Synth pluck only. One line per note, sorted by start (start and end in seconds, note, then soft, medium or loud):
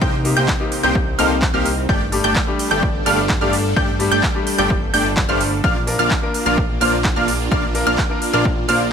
0.02 0.14 G6 loud
0.37 0.49 G6 loud
0.83 0.96 G6 medium
1.19 1.31 F6 loud
1.54 1.67 F6 medium
1.89 2.02 G6 loud
2.24 2.37 G6 loud
2.71 2.84 G6 loud
3.06 3.19 F6 loud
3.41 3.54 F6 medium
3.76 3.89 G6 loud
4.12 4.24 G6 loud
4.58 4.71 G6 loud
4.94 5.06 G6 medium
5.29 5.42 F6 loud
5.64 5.77 F6 loud
5.99 6.12 F6 loud
6.46 6.59 F6 medium
6.81 6.94 F6 loud
7.16 7.29 F6 medium
7.51 7.64 F6 loud
7.87 7.99 F6 loud
8.34 8.46 F6 loud
8.69 8.81 F6 loud